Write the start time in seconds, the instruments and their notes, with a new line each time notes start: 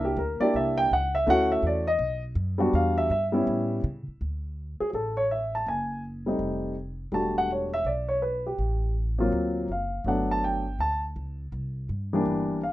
Already playing: upright bass C2, grand piano A#3 D4 E4 A#4
0.05 grand piano G4
0.17 upright bass D2, grand piano A#4
0.40 grand piano A#3 D4 E4 G4 D5, muted upright bass stroke
0.54 upright bass C2, grand piano E5
0.78 grand piano G5
0.91 upright bass C#2, grand piano F#5
1.15 grand piano E5
1.26 upright bass D2, grand piano A3 C#4 E4 F#4 F#5
1.52 grand piano E5
1.63 upright bass E2
1.67 grand piano D5
1.87 grand piano D#5
1.99 upright bass B1
2.35 upright bass F#2
2.58 grand piano G3 B3 D4 F#4
2.73 upright bass E2, grand piano F5
2.98 grand piano E5
3.10 upright bass G2, grand piano E5
3.32 grand piano G3 B3 C#4 E4
3.47 upright bass A2
3.84 upright bass C#3
4.08 muted upright bass stroke
4.21 upright bass D2
4.80 grand piano G#4, muted upright bass stroke
4.90 upright bass A1, grand piano G#4
4.94 grand piano A4
5.17 grand piano C#5
5.31 grand piano E5
5.55 grand piano A5
5.67 upright bass F#1, grand piano G#5
6.26 grand piano G3 A3 C4 D#4
6.39 upright bass F1
7.12 upright bass E1, grand piano G3 A3 D4 F#4 A5
7.38 grand piano F#5
7.52 grand piano C#5
7.74 grand piano E5
7.85 upright bass B1, grand piano D5
8.08 grand piano C#5
8.22 grand piano B4
8.47 grand piano G4
8.59 upright bass A1
9.18 grand piano F#3 A#3 C4 F4
9.32 upright bass D2
9.69 upright bass F#1, grand piano F5
10.04 upright bass G1, grand piano F#3 A3 B3 D4 F#5
10.31 grand piano A5
10.44 grand piano G5
10.79 upright bass D2, grand piano A5
11.16 upright bass C#2
11.52 upright bass C2
11.89 upright bass G2
12.13 grand piano E3 G3 A#3 D4
12.25 upright bass G1
12.63 grand piano F5